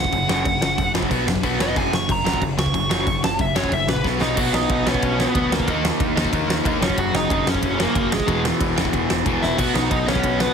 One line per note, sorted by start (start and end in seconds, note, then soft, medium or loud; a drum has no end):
0.00 0.11 F#2 medium
0.00 0.11 C#3 medium
0.00 0.91 F#5 loud
0.05 kick medium
0.12 0.26 F#1 loud
0.12 0.27 F#2 medium
0.12 0.27 C#3 medium
0.12 kick loud
0.12 crash medium
0.28 0.42 F#1 loud
0.28 0.44 F#2 medium
0.28 0.44 C#3 loud
0.28 0.45 F#3 loud
0.28 snare loud
0.45 0.59 F#1 medium
0.45 0.60 F#2 medium
0.45 0.60 C#3 medium
0.45 kick loud
0.45 crash medium
0.60 0.74 F#1 medium
0.60 0.76 F#2 medium
0.60 0.76 C#3 medium
0.60 snare loud
0.78 0.91 F#1 loud
0.78 0.93 F#2 medium
0.78 0.93 C#3 medium
0.78 kick loud
0.78 crash medium
0.93 1.07 F#1 medium
0.93 1.09 F#2 loud
0.93 1.10 C#3 loud
0.93 1.10 F#3 loud
0.93 snare loud
1.03 kick medium
1.11 1.24 B1 medium
1.11 1.26 B2 medium
1.11 1.26 F#3 medium
1.11 1.26 B3 medium
1.11 kick loud
1.11 crash medium
1.27 1.40 F#1 medium
1.27 1.42 B2 medium
1.27 1.42 F#3 medium
1.27 snare loud
1.35 kick medium
1.43 1.57 B1 medium
1.43 1.59 B2 medium
1.43 1.59 F#3 medium
1.43 1.59 B3 loud
1.43 kick loud
1.43 crash medium
1.59 1.72 F1 loud
1.59 1.75 B2 loud
1.59 1.75 F#3 loud
1.59 1.75 B3 loud
1.59 1.76 D#5 loud
1.59 snare loud
1.76 1.90 F#1 medium
1.76 1.91 F#2 loud
1.76 1.91 C#3 loud
1.76 1.92 F#3 loud
1.76 1.93 G#5 medium
1.76 kick loud
1.76 crash medium
1.92 2.06 F#1 medium
1.92 2.07 F#2 medium
1.92 2.07 C#3 medium
1.92 2.11 C#6 loud
1.92 snare loud
2.09 2.22 F#1 medium
2.09 2.23 F#2 medium
2.09 2.24 C#3 medium
2.09 2.42 A#5 loud
2.09 kick loud
2.09 crash medium
2.24 2.38 F#1 loud
2.24 2.40 F#2 medium
2.24 2.40 C#3 loud
2.24 2.40 F#3 loud
2.24 snare loud
2.34 kick medium
2.42 2.55 F#1 loud
2.42 2.56 F#2 medium
2.42 2.56 C#3 medium
2.42 kick loud
2.42 crash medium
2.57 2.71 C#2 medium
2.57 2.72 F#2 medium
2.57 2.72 C#3 medium
2.57 3.22 C#6 loud
2.57 snare loud
2.66 kick medium
2.74 2.88 F#1 medium
2.74 2.88 F#2 medium
2.74 2.89 C#3 medium
2.74 kick loud
2.74 crash medium
2.89 3.04 F#1 loud
2.89 3.05 F#2 loud
2.89 3.05 C#3 loud
2.89 3.06 F#3 loud
2.89 snare loud
3.07 3.20 F#1 loud
3.07 3.21 F#2 medium
3.07 3.21 C#3 medium
3.07 kick loud
3.07 crash medium
3.23 3.37 F#1 loud
3.23 3.37 F#2 medium
3.23 3.38 C#3 medium
3.23 3.39 A5 medium
3.23 snare loud
3.39 3.53 F#1 loud
3.39 3.54 F#2 medium
3.39 3.54 C#3 medium
3.39 3.56 E5 loud
3.39 kick loud
3.39 crash medium
3.55 3.69 F#1 medium
3.55 3.71 F#2 loud
3.55 3.71 C#3 loud
3.55 3.71 F#3 loud
3.55 3.73 C#5 loud
3.55 snare loud
3.64 kick loud
3.72 3.85 F#1 loud
3.72 3.87 F#2 medium
3.72 3.87 C#3 medium
3.72 3.88 E5 medium
3.72 kick loud
3.72 crash medium
3.87 4.05 A#1 medium
3.87 4.03 F#2 medium
3.87 4.03 C#3 medium
3.87 4.05 B4 loud
3.87 snare loud
3.96 kick medium
4.04 4.18 B1 medium
4.04 4.20 B2 medium
4.04 4.20 F#3 medium
4.04 4.20 B3 medium
4.04 kick loud
4.04 snare medium
4.20 4.34 B1 loud
4.20 4.36 B2 loud
4.20 4.36 F#3 medium
4.20 4.37 B3 loud
4.20 4.36 D#4 medium
4.20 4.38 D#5 loud
4.20 snare medium
4.37 4.48 B1 medium
4.37 4.85 B2 medium
4.37 4.87 F#3 loud
4.37 4.85 B3 loud
4.37 4.52 F#4 medium
4.37 4.54 F#5 medium
4.37 kick loud
4.37 crash loud
4.53 4.65 B1 loud
4.53 4.69 D#4 medium
4.53 4.70 D#5 medium
4.53 snare loud
4.69 4.81 B1 medium
4.69 4.85 D#4 medium
4.69 4.88 D#5 loud
4.69 kick loud
4.69 ride medium
4.86 4.97 B1 loud
4.86 5.33 B2 medium
4.86 5.35 F#3 loud
4.86 5.34 B3 loud
4.86 5.17 C#4 medium
4.86 5.19 C#5 loud
4.86 snare loud
4.94 kick medium
5.02 5.25 B1 loud
5.02 kick loud
5.02 ride medium
5.20 5.50 B3 medium
5.20 5.50 B4 loud
5.20 snare loud
5.34 5.67 D2 loud
5.34 5.66 B2 medium
5.34 5.68 F#3 medium
5.34 5.67 B3 medium
5.34 kick loud
5.34 ride medium
5.52 5.82 A#3 medium
5.52 5.83 A#4 medium
5.52 snare loud
5.60 kick medium
5.67 5.90 D#2 medium
5.67 6.15 D#3 loud
5.67 6.17 A#3 loud
5.67 6.14 D#4 loud
5.67 kick medium
5.67 ride medium
5.85 snare loud
6.00 6.11 D#2 loud
6.00 kick loud
6.00 ride medium
6.15 6.27 D#2 loud
6.15 6.63 D#3 medium
6.15 6.64 A#3 medium
6.15 6.64 D#4 loud
6.15 snare loud
6.25 kick medium
6.33 6.44 D#2 loud
6.33 kick loud
6.33 ride medium
6.48 6.59 D#2 medium
6.48 snare loud
6.64 6.76 D#2 loud
6.64 6.80 D#3 medium
6.64 6.81 A#3 medium
6.64 6.81 D#4 medium
6.64 kick loud
6.64 ride medium
6.79 6.91 F#1 loud
6.79 7.28 F#2 loud
6.79 7.29 C#3 loud
6.79 7.30 F#3 loud
6.79 6.97 C#4 medium
6.79 6.99 C#5 medium
6.79 snare loud
6.90 kick medium
6.98 7.09 F#1 loud
6.98 7.14 F#4 medium
6.98 7.15 F#5 loud
6.98 kick loud
6.98 ride medium
7.13 7.25 F#1 medium
7.13 7.30 D#4 medium
7.13 7.31 D#5 medium
7.13 snare loud
7.29 7.42 F#1 loud
7.29 7.77 F#2 loud
7.29 7.78 C#3 medium
7.29 7.77 F#3 loud
7.29 7.47 D#4 medium
7.29 kick loud
7.29 ride medium
7.33 7.49 D#5 medium
7.47 7.58 F#1 medium
7.47 7.78 C#4 medium
7.47 7.81 C#5 loud
7.47 snare loud
7.55 kick medium
7.63 7.85 F#1 loud
7.63 kick loud
7.63 ride medium
7.78 8.12 F#2 medium
7.78 8.11 C#3 medium
7.78 8.10 F#3 medium
7.78 8.11 A#3 medium
7.78 8.12 A#4 medium
7.78 snare loud
7.95 8.18 F#1 medium
7.95 kick loud
7.95 ride medium
8.12 8.43 G#3 medium
8.12 8.43 G#4 medium
8.12 snare loud
8.20 kick medium
8.27 8.50 E1 medium
8.27 8.75 E2 loud
8.27 8.76 B2 loud
8.27 8.75 E3 loud
8.27 kick loud
8.27 ride medium
8.45 snare loud
8.61 8.72 E1 loud
8.61 kick loud
8.61 ride medium
8.76 8.88 E1 medium
8.76 9.24 E2 medium
8.76 9.25 B2 medium
8.76 9.25 E3 loud
8.76 snare loud
8.85 kick medium
8.93 9.05 E1 medium
8.93 kick loud
8.93 ride medium
9.10 9.21 E1 medium
9.10 snare loud
9.25 9.37 E1 medium
9.25 9.57 E2 medium
9.25 9.56 B2 medium
9.25 9.58 E3 medium
9.25 kick loud
9.25 ride medium
9.43 9.54 E1 medium
9.43 9.58 E4 medium
9.43 9.57 E5 medium
9.43 snare medium
9.57 9.70 B1 medium
9.57 10.06 B2 medium
9.57 10.07 F#3 loud
9.57 10.05 B3 loud
9.57 9.73 F#4 medium
9.57 9.74 F#5 loud
9.57 kick loud
9.57 crash loud
9.57 ride medium
9.74 9.86 B1 loud
9.74 9.89 D#4 medium
9.74 9.89 D#5 loud
9.74 snare loud
9.90 10.02 B1 medium
9.90 10.06 D#4 medium
9.90 10.07 D#5 medium
9.90 kick loud
9.90 ride medium
10.06 10.18 B1 loud
10.06 10.54 B2 medium
10.06 10.54 F#3 medium
10.06 10.54 B3 loud
10.06 10.38 C#4 medium
10.06 10.40 C#5 loud
10.06 snare loud
10.15 kick loud
10.23 10.46 B1 loud
10.23 kick loud
10.23 ride medium
10.40 10.54 B3 medium
10.40 10.54 B4 loud
10.40 snare loud